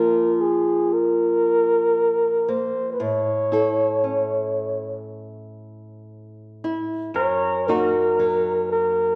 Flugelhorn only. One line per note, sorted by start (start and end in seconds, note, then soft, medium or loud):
0.00 0.42 A#4 medium
0.41 0.95 G#4 medium
0.93 2.51 A#4 medium
2.50 2.92 C5 medium
2.93 3.04 B4 soft
3.03 5.10 C#5 medium
7.16 7.69 C#5 medium
7.67 8.71 A#4 medium
8.72 9.15 A#4 medium